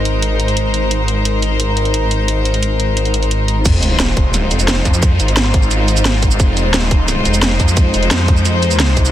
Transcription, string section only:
0, 0, Header, 1, 2, 480
1, 0, Start_track
1, 0, Key_signature, -4, "minor"
1, 0, Tempo, 342857
1, 1275, Time_signature, 4, 2, 24, 8
1, 12761, End_track
2, 0, Start_track
2, 0, Title_t, "String section"
2, 0, Program_c, 0, 48
2, 0, Note_on_c, 0, 56, 74
2, 0, Note_on_c, 0, 63, 72
2, 0, Note_on_c, 0, 70, 70
2, 0, Note_on_c, 0, 72, 86
2, 5059, Note_off_c, 0, 70, 0
2, 5059, Note_off_c, 0, 72, 0
2, 5060, Note_off_c, 0, 56, 0
2, 5060, Note_off_c, 0, 63, 0
2, 5115, Note_on_c, 0, 56, 83
2, 5116, Note_on_c, 0, 63, 76
2, 5116, Note_on_c, 0, 65, 76
2, 5116, Note_on_c, 0, 72, 89
2, 12740, Note_off_c, 0, 65, 0
2, 12761, Note_off_c, 0, 56, 0
2, 12761, Note_off_c, 0, 63, 0
2, 12761, Note_off_c, 0, 72, 0
2, 12761, End_track
0, 0, End_of_file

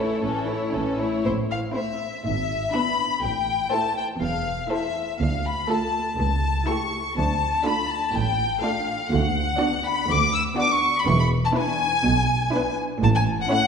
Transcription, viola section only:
0, 0, Header, 1, 2, 480
1, 0, Start_track
1, 0, Tempo, 505476
1, 1184, Time_signature, 4, 2, 24, 8
1, 1663, Tempo, 493827
1, 4543, Tempo, 488998
1, 13335, End_track
2, 0, Start_track
2, 0, Title_t, "Viola section"
2, 0, Program_c, 0, 48
2, 0, Note_on_c, 0, 57, 31
2, 0, Note_on_c, 0, 64, 34
2, 228, Note_off_c, 0, 64, 0
2, 228, Note_on_c, 0, 52, 35
2, 229, Note_off_c, 0, 57, 0
2, 229, Note_on_c, 0, 61, 35
2, 449, Note_off_c, 0, 52, 0
2, 450, Note_off_c, 0, 61, 0
2, 468, Note_on_c, 0, 64, 33
2, 469, Note_on_c, 0, 57, 31
2, 705, Note_off_c, 0, 64, 0
2, 705, Note_on_c, 0, 52, 33
2, 705, Note_on_c, 0, 61, 31
2, 706, Note_off_c, 0, 57, 0
2, 942, Note_on_c, 0, 57, 33
2, 942, Note_on_c, 0, 64, 33
2, 945, Note_off_c, 0, 52, 0
2, 945, Note_off_c, 0, 61, 0
2, 1183, Note_off_c, 0, 57, 0
2, 1183, Note_off_c, 0, 64, 0
2, 1658, Note_on_c, 0, 57, 48
2, 1658, Note_on_c, 0, 60, 49
2, 2019, Note_off_c, 0, 57, 0
2, 2019, Note_off_c, 0, 60, 0
2, 2623, Note_on_c, 0, 59, 52
2, 2625, Note_on_c, 0, 62, 50
2, 2979, Note_off_c, 0, 59, 0
2, 2980, Note_off_c, 0, 62, 0
2, 3577, Note_on_c, 0, 57, 51
2, 3579, Note_on_c, 0, 64, 54
2, 3936, Note_off_c, 0, 57, 0
2, 3937, Note_off_c, 0, 64, 0
2, 4535, Note_on_c, 0, 64, 51
2, 4536, Note_on_c, 0, 57, 49
2, 4897, Note_off_c, 0, 64, 0
2, 4898, Note_off_c, 0, 57, 0
2, 5504, Note_on_c, 0, 57, 54
2, 5504, Note_on_c, 0, 65, 52
2, 5863, Note_off_c, 0, 57, 0
2, 5863, Note_off_c, 0, 65, 0
2, 6467, Note_on_c, 0, 64, 53
2, 6468, Note_on_c, 0, 57, 56
2, 6825, Note_off_c, 0, 64, 0
2, 6826, Note_off_c, 0, 57, 0
2, 7424, Note_on_c, 0, 57, 53
2, 7427, Note_on_c, 0, 62, 54
2, 7782, Note_off_c, 0, 57, 0
2, 7784, Note_off_c, 0, 62, 0
2, 8387, Note_on_c, 0, 57, 57
2, 8391, Note_on_c, 0, 62, 62
2, 8742, Note_off_c, 0, 57, 0
2, 8744, Note_off_c, 0, 62, 0
2, 9338, Note_on_c, 0, 59, 60
2, 9341, Note_on_c, 0, 62, 60
2, 9699, Note_off_c, 0, 59, 0
2, 9700, Note_off_c, 0, 62, 0
2, 10301, Note_on_c, 0, 62, 62
2, 10303, Note_on_c, 0, 59, 67
2, 10659, Note_off_c, 0, 62, 0
2, 10661, Note_off_c, 0, 59, 0
2, 11258, Note_on_c, 0, 59, 63
2, 11259, Note_on_c, 0, 62, 66
2, 11617, Note_off_c, 0, 59, 0
2, 11618, Note_off_c, 0, 62, 0
2, 12222, Note_on_c, 0, 59, 62
2, 12225, Note_on_c, 0, 62, 66
2, 12577, Note_off_c, 0, 59, 0
2, 12579, Note_off_c, 0, 62, 0
2, 13177, Note_on_c, 0, 57, 59
2, 13178, Note_on_c, 0, 61, 65
2, 13335, Note_off_c, 0, 57, 0
2, 13335, Note_off_c, 0, 61, 0
2, 13335, End_track
0, 0, End_of_file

